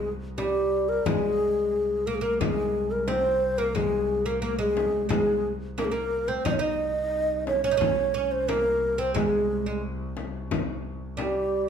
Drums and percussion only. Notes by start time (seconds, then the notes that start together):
0.38 frame drum
1.06 frame drum
2.41 frame drum
3.08 frame drum
3.76 frame drum
4.77 frame drum
5.10 frame drum
5.78 frame drum
6.46 frame drum
7.47 frame drum
7.81 frame drum
8.49 frame drum
9.16 frame drum
10.17 frame drum
10.51 frame drum
11.18 frame drum